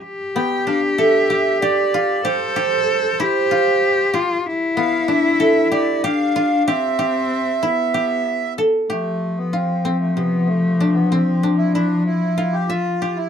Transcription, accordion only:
X:1
M:7/8
L:1/16
Q:1/4=95
K:Flyd
V:1 name="Accordion"
z2 g2 f2 e4 d4 | c12 z2 | z2 f2 e4 d2 f4 | e12 z2 |
A,3 B, C3 A, B,2 A,3 B, | C3 E D2 E3 G F3 E |]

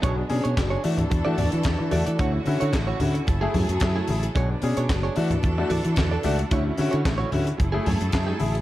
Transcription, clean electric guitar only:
X:1
M:4/4
L:1/16
Q:1/4=111
K:Bdor
V:1 name="Clean electric guitar"
[DGc]2 z [DGc] z [DGc]2 z2 [FAd] [FAd] z3 [FAd] [FAd] | [EFc]2 z [EFc] z [EFc]2 z2 [A,EG] [A,EG] z2 [A,EG]2 z | [DGc]2 z [DGc] z [DGc]2 z3 [FAd]2 z [FAd] [FAd] z | [EFc]2 z [EFc] z [EFc]2 z2 [A,EG] [A,EG] z2 [A,EG]2 z |]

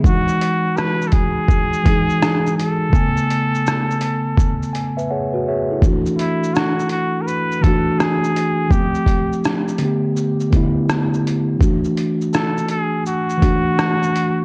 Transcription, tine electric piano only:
X:1
M:4/4
L:1/16
Q:"Swing 16ths" 1/4=83
K:Alyd
V:1 name="Tine electric piano"
z16 | z8 z2 g [Be] [Gcf] [FB] [Gce] [EA]- | [K:A] [EA] z12 z3 | z16 |
z16 |]
V:2 name="Tine electric piano"
[E,G,DF]8 z2 [E,G,DG]6 | [C,A,B,g]8 z8 | [K:A] [E,A,DF]8 z2 [E,A,DF]6 | [=F,A,B,=C=G]6 [D,A,B,G]4 [D,A,B,E]6 |
[E,A,DF]8 z2 [E,A,DF]6 |]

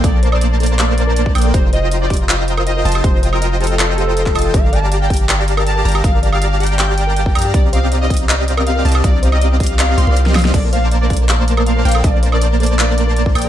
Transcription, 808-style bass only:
X:1
M:4/4
L:1/16
Q:1/4=160
K:Bb
V:1 name="808-style bass" clef=bass
B,,,12- B,,,2 B,,,2 | z12 z2 F,,,2 | F,,,12- F,,,2 F,,,2 | G,,,12- G,,,2 G,,,2 |
G,,,12- G,,,2 G,,2 | C,,12- C,,2 C,,2 | C,,8- C,,2 C,, C,,4- C,, | B,,,12- B,,,2 B,,,2 |
B,,,12- B,,,2 B,,,2 |]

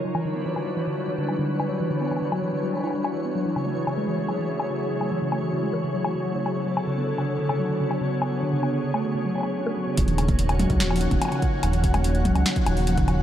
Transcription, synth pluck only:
X:1
M:4/4
L:1/16
Q:1/4=145
K:Cblyd
V:1 name="Synth pluck" clef=bass
^F, =E, =D, =B, E, D, F, E, D, F, E, D, F, D, F, D, | ^F, =E, =D, =B, E, D, F, E, D, F, E, =E =G, =D E, B, | G, _F, D, =A, F, D, _A, F, D, G, F, D, G, D, G, D, | G, _F, D, =A, F, D, _A, F, D, G, F, D, G, D, ^F, ^C, |
^F, =D, ^C, =B, D, C, =A, D, C, F, D, C, F, C, F, C, | ^F, =D, ^C, =B, D, C, =A, D, C, F, D, F, ^C A, F, C, | F, E, D, B, E, D, G, E, D, F, E, D, F, D, F, D, | F, E, D, B, E, D, G, E, D, F, E, D, F, D, F, D, |]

